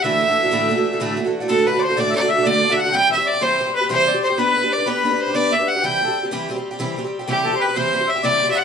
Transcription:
0.03 twelve-string acoustic guitar D2 A2 E3 A3 D4 F#4, fiddle E5, accordion E5
0.20 twelve-string acoustic guitar E3 A3 D4 F#4
0.28 twelve-string acoustic guitar E3 A3 D4 F#4
0.43 twelve-string acoustic guitar E3 A3 D4 F#4
0.51 twelve-string acoustic guitar D2 A2 E3 A3 D4 F#4
0.69 twelve-string acoustic guitar E3 A3 D4 F#4
0.76 twelve-string acoustic guitar E3 A3 D4 F#4
0.92 twelve-string acoustic guitar E3 A3 D4 F#4
1.00 twelve-string acoustic guitar D2 A2 E3 A3 D4 F#4
1.17 twelve-string acoustic guitar E3 A3 D4 F#4
1.25 twelve-string acoustic guitar E3 A3 D4 F#4
1.40 twelve-string acoustic guitar E3 A3 D4 F#4
1.48 twelve-string acoustic guitar D2 A2 D3 A3 D4 F#4, accordion A4, fiddle A4
1.65 twelve-string acoustic guitar D3 A3 D4 F#4, accordion B4, fiddle B4
1.73 twelve-string acoustic guitar D3 A3 D4 F#4
1.79 accordion C5, fiddle D5
1.84 fiddle C5
1.89 twelve-string acoustic guitar D3 A3 D4 F#4
1.96 twelve-string acoustic guitar D2 A2 D3 A3 D4 F#4, accordion D5, fiddle D5
2.10 twelve-string acoustic guitar D3, accordion D5 E5
2.15 twelve-string acoustic guitar A3 D4 F#4, fiddle D5
2.22 twelve-string acoustic guitar D3 A3 D4 F#4
2.28 accordion E5, fiddle E5
2.37 twelve-string acoustic guitar D3 A3 D4 F#4
2.44 twelve-string acoustic guitar D2 A2 D3 A3 D4 F#4, accordion D5, fiddle D5
2.62 twelve-string acoustic guitar D3 A3 D4 F#4
2.69 twelve-string acoustic guitar D3 A3 D4 F#4, accordion E5, fiddle E5
2.77 accordion F#5, fiddle F#5
2.85 twelve-string acoustic guitar D3 A3 D4 F#4
2.92 twelve-string acoustic guitar C3 E3 G3 C4 G4, accordion G5, fiddle G5
3.09 twelve-string acoustic guitar E3 G3 C4 G4, accordion E5, fiddle E5
3.17 twelve-string acoustic guitar G3 C4 G4
3.26 accordion D5, fiddle D5
3.33 twelve-string acoustic guitar G3 C4 G4
3.41 twelve-string acoustic guitar C3 E3 G3 C4 G4, accordion C5, fiddle C5
3.58 twelve-string acoustic guitar E3 G3 C4 G4, accordion C5
3.65 twelve-string acoustic guitar G3 C4 G4
3.73 accordion B4, fiddle B4
3.81 twelve-string acoustic guitar G3 C4 G4
3.89 twelve-string acoustic guitar C3 E3 G3 C4 G4, accordion C5, fiddle C5
4.06 twelve-string acoustic guitar E3 G3 C4 G4, accordion D5
4.14 twelve-string acoustic guitar G3 C4 G4
4.22 accordion C5, fiddle C5
4.30 twelve-string acoustic guitar G3 C4 G4
4.37 twelve-string acoustic guitar B3 D4 G4 B4, accordion B4, fiddle B4
4.54 twelve-string acoustic guitar B3 D4 G4 B4
4.62 twelve-string acoustic guitar D4 G4 B4
4.71 accordion D5, fiddle D5
4.78 twelve-string acoustic guitar D4 G4 B4
4.86 twelve-string acoustic guitar B3 D4 G4 B4, accordion B4, fiddle B4
5.03 twelve-string acoustic guitar B3 D4 G4 B4
5.11 twelve-string acoustic guitar D4 G4 B4
5.15 fiddle B4
5.20 fiddle C5
5.26 twelve-string acoustic guitar D4 G4 B4
5.34 twelve-string acoustic guitar B3 D4 G4 B4, accordion D5, fiddle D5
5.51 twelve-string acoustic guitar B3 D4 G4 B4, accordion E5, fiddle E5
5.59 twelve-string acoustic guitar D4 G4 B4
5.67 accordion F#5, fiddle F#5
5.75 twelve-string acoustic guitar D4 G4 B4
5.81 twelve-string acoustic guitar C3 E3 G3 C4 G4, accordion G5, fiddle G5
6.00 twelve-string acoustic guitar E3 G3 C4 G4, accordion A4
6.08 twelve-string acoustic guitar G3 C4 G4
6.23 twelve-string acoustic guitar G3 C4 G4
6.31 twelve-string acoustic guitar C3 E3 G3 C4 G4
6.48 twelve-string acoustic guitar E3 G3 C4 G4
6.56 twelve-string acoustic guitar G3 C4 G4
6.71 twelve-string acoustic guitar G3 C4 G4
6.79 twelve-string acoustic guitar C3 E3 G3 C4 G4
6.96 twelve-string acoustic guitar E3 G3 C4 G4
7.04 twelve-string acoustic guitar G3 C4 G4
7.19 twelve-string acoustic guitar G3 C4 G4
7.27 twelve-string acoustic guitar C3 E3 G3 C4 G4, accordion G4, fiddle G4
7.44 twelve-string acoustic guitar E3 G3 C4 G4, accordion A4
7.52 twelve-string acoustic guitar G3 C4 G4, accordion C5
7.59 accordion B4, fiddle B4
7.67 twelve-string acoustic guitar G3 C4 G4
7.75 twelve-string acoustic guitar C3 E3 G3 C4 G4, accordion C5, fiddle C5
7.93 twelve-string acoustic guitar E3 G3 C4 G4
8.00 twelve-string acoustic guitar G3 C4 G4
8.07 accordion E5, fiddle E5
8.15 twelve-string acoustic guitar G3 C4 G4
8.23 twelve-string acoustic guitar C3 E3 G3 C4 G4, accordion D5, fiddle D5
8.40 twelve-string acoustic guitar E3 G3 C4 G4
8.49 twelve-string acoustic guitar G3 C4 G4, fiddle E5
8.55 accordion F#5, fiddle F#5

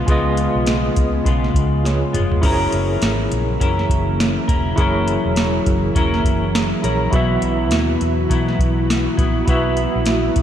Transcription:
Already playing: ambient pad C#3 F3 G#3 B3 F4
0.06 fingered electric bass C#2, clean electric guitar C#3 G#3 B3, tine electric piano F4 G#4 B4, kick, closed hi-hat
0.10 clean electric guitar F4, tine electric piano D#5
0.37 closed hi-hat
0.55 fingered electric bass B1
0.67 snare, closed hi-hat
0.96 fingered electric bass C#2, kick, closed hi-hat
1.25 fingered electric bass B1, clean electric guitar C#3 G#3 B3 F4, kick, closed hi-hat
1.44 snare
1.54 fingered electric bass C#2, kick, closed hi-hat
1.84 tine electric piano F4 G#4 B4 C#5, snare, closed hi-hat
2.13 fingered electric bass F1, clean electric guitar G#3 B3 F4, closed hi-hat, mid tom
2.32 floor tom
2.41 fingered electric bass F#1, ambient pad C#3 E3 F#3 A#3 E4, clean electric guitar F#3 C#4 E4, tine electric piano E4 G#4 A#4, kick, crash
2.46 clean electric guitar A#4, tine electric piano C5
2.52 tine electric piano C#5
2.72 fingered electric bass F#1, closed hi-hat
3.02 fingered electric bass G#1, snare, closed hi-hat
3.31 fingered electric bass A#1, closed hi-hat
3.60 fingered electric bass F#2, clean electric guitar F#3 C#4 E4 A#4, kick, closed hi-hat
3.79 snare
3.89 fingered electric bass F#1, kick, closed hi-hat
4.20 snare, closed hi-hat
4.48 fingered electric bass E1, clean electric guitar C#4 E4 A#4, kick, closed hi-hat
4.76 fingered electric bass F#1, clean electric guitar F#3 C#4 E4, tine electric piano E4 G#4 A#4, kick, closed hi-hat
4.80 clean electric guitar A#4, tine electric piano C#5
5.08 closed hi-hat
5.25 fingered electric bass E1
5.36 snare, closed hi-hat
5.66 fingered electric bass F#1, kick, closed hi-hat
5.95 fingered electric bass E1, clean electric guitar F#3 C#4 E4 A#4, kick, closed hi-hat
6.14 snare
6.24 fingered electric bass F#1, kick, closed hi-hat
6.55 snare, closed hi-hat
6.82 fingered electric bass A#1, clean electric guitar C#4 E4 A#4, tine electric piano E4 G#4 A#4 C#5, closed hi-hat
7.10 fingered electric bass B1, clean electric guitar B2 F#3, ambient pad B3 F#4, tine electric piano E4 F#4 B4, kick, closed hi-hat
7.15 clean electric guitar B3 E4, tine electric piano E5
7.42 fingered electric bass B1, closed hi-hat
7.71 fingered electric bass D#2, snare, closed hi-hat
8.01 fingered electric bass E2, closed hi-hat
8.29 clean electric guitar B2 F#3 B3 E4, fingered electric bass B2, kick, closed hi-hat
8.48 snare
8.59 fingered electric bass B1, kick, closed hi-hat
8.90 snare, closed hi-hat
9.17 fingered electric bass A#1, clean electric guitar F#3 B3 E4, kick, closed hi-hat
9.46 fingered electric bass B1, clean electric guitar F#3 B3, tine electric piano E4 F#4 B4, kick, closed hi-hat
9.50 clean electric guitar E4, tine electric piano E5
9.77 closed hi-hat
9.95 fingered electric bass A#1
10.06 snare, closed hi-hat
10.36 fingered electric bass B1, kick, closed hi-hat

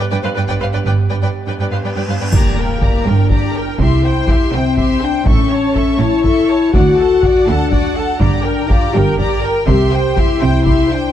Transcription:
Already playing: french horn section B3 G4
0.11 cello section G2, viola section B4, violin section D5 G5
0.23 cello section G2, viola section B4, violin section C5 F5
0.36 cello section G2, viola section B4, violin section D5 G5
0.48 cello section G2, viola section B4, violin section D5 G5, taiko
0.60 cello section G2, viola section B4, violin section C5 F5
0.72 cello section G2, viola section B4, violin section D5 G5
0.85 double bass section G1, cello section G2, viola section B4, violin section D5 G5, cymbal swell
1.10 cello section G2, viola section B4, violin section D5 G5
1.22 cello section G2, viola section B4, violin section D5 G5
1.46 cello section G2, viola section B4, violin section D5 G5
1.59 cello section G2, viola section B4, violin section D5 G5
1.71 cello section G2, viola section B4, violin section C5 F5
1.83 cello section G2, viola section B4, violin section D5 G5
1.96 cello section G2, viola section B4, violin section D5 G5
2.08 cello section G2, french horn section B3, viola section B4, violin section C5 F5
2.20 cello section G2, viola section B4, violin section D5 G5
2.32 double bass section G1, cello section G2, french horn section A#3, viola section G4, violin section D5 A#5, taiko, impact, triangle
2.58 violin section A#4 G5, viola section A#4
2.81 viola section G4, violin section D5 A#5, taiko
3.06 double bass section G1, cello section G2, french horn section D4, viola section A#4, violin section A#4 G5
3.30 viola section G4, violin section D5 A#5, taiko
3.55 viola section A#4, violin section A#4 G5
3.78 double bass section C2, cello section C3, french horn section E4, viola section G4, violin section E5 C6, taiko
4.04 viola section C5, violin section G5
4.28 viola section G4, violin section E5 C6, taiko
4.53 double bass section C2, cello section C3, french horn section C4, viola section C5, violin section G5
4.77 viola section G4, violin section E5 C6, taiko
5.01 french horn section D4, viola section C5, violin section G5
5.26 double bass section A1, cello section A2, french horn section C#4, viola section A4, violin section E5 C#6, taiko
5.50 viola section C#5, violin section C#5 A5
5.74 viola section A4, violin section E5 C#6, taiko
5.99 double bass section A1, cello section A2, french horn section E4, viola section C#5, violin section C#5 A5
6.23 viola section A4, violin section E5 C#6, taiko
6.48 viola section C#5, violin section C#5 A5
6.72 cello section D2, double bass section D2, viola section F#4, french horn section F#4, violin section D5 F#5, taiko
6.98 viola section A4, violin section F#5 A5
7.22 viola section F#4, violin section D5 F#5, taiko
7.47 cello section D2, double bass section D2, french horn section D4, viola section A4, violin section F#5 A5
7.72 viola section F#4, violin section D5 F#5, taiko
7.96 viola section A4, violin section F#5 A5
8.20 double bass section G1, cello section G2, french horn section D4, viola section G4, violin section D5 A#5, taiko
8.44 viola section A#4, violin section A#4 G5
8.68 french horn section F4, viola section G4, violin section D5 A#5, taiko
8.93 double bass section G1, cello section G2, french horn section G4, viola section A#4, violin section A#4 G5
9.18 viola section G4, violin section D5 A#5, taiko
9.42 viola section A#4, french horn section A#4, violin section A#4 G5
9.67 double bass section C2, cello section C3, viola section G4, french horn section G4, violin section E5 C6, taiko
9.92 viola section C5, violin section G5
10.17 french horn section E4, viola section G4, violin section E5 C6, taiko
10.40 double bass section C2, cello section C3, french horn section E4, viola section C5, violin section G5
10.65 viola section G4, violin section E5 C6, taiko
10.89 french horn section D4, viola section C5, violin section G5

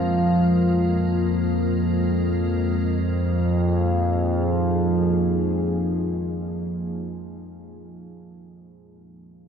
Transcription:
Already playing: synth drone F2 F3, ambient pad F3 G#3 A#3 F4 G#4 A#4
2.78 synth drone F2 F3, ambient pad F3
2.93 ambient pad A#3
3.08 ambient pad D#4
3.23 ambient pad G#4

